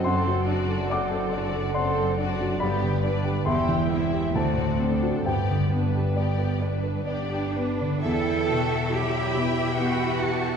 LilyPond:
<<
  \new Staff \with { instrumentName = "Violin section" } { \time 3/4 \key g \major \tempo 4 = 69 c''8 d''8 c''8 d''8 c''8 d''8 | b'8 d''8 g''8 e''8 d''8 c''8 | d''8 b'8 d''8 b'8 d''8 b'8 | \key e \minor g''4 b''4 b''8 a''8 | }
  \new Staff \with { instrumentName = "Violin section" } { \time 3/4 \key g \major << { r2. | r2. | r2. | \key e \minor e''4 g''2 | } \\ { a'8 fis'8 a'8 fis'8 a'8 fis'8 | g'8 b'8 g'8 e'8 fis'8 a'8 | g'8 b'8 g'8 b'8 g'8 b'8 | e''2. | } >> }
  \new Staff \with { instrumentName = "Grand piano" } { \time 3/4 \key g \major << { <fis'' c'''>4 <fis'' d'''>4 <fis'' c'''>4 | <d'' b''>4 <e'' c'''>4 <c'' a''>4 | <b' g''>2 r4 | \key e \minor r2. | } \\ { fis,16 fis16 d'16 a'16 d''16 a'16 d''16 a'16 d''16 a'16 d'16 fis16 | g,16 d16 d'16 g'16 e,16 e16 e'16 g'16 d,16 a,16 c'16 fis'16 | g,16 d16 b16 g'16 d''16 b'16 d''16 b'16 d''16 g'16 b16 d16 | e,8 b,8 g'8 b,8 b8 g'8 | } >> }
  \new Staff \with { instrumentName = "Viola section" } { \time 3/4 \key g \major << { c'8 d'8 c'8 d'8 c'8 d'8 | b8 d'8 e'8 c'8 c'8 d'8 | b8 d'8 b8 d'8 b8 d'8 | \key e \minor e'8 fis'8 e'4 g'4 | } \\ { r2. | r2. | r2. | e4 fis8 e4. | } >> }
  \new Staff \with { instrumentName = "Cello section" } { \clef bass \time 3/4 \key g \major fis,2. | g,4 e,4 d,4 | g,2 d'4 | \key e \minor a'4 g'4 fis'4 | }
  \new Staff \with { instrumentName = "Double bass section" } { \clef bass \time 3/4 \key g \major fis,,2. | g,,4 e,,4 d,4 | g,,2~ g,,8. r16 | \key e \minor r2. | }
>>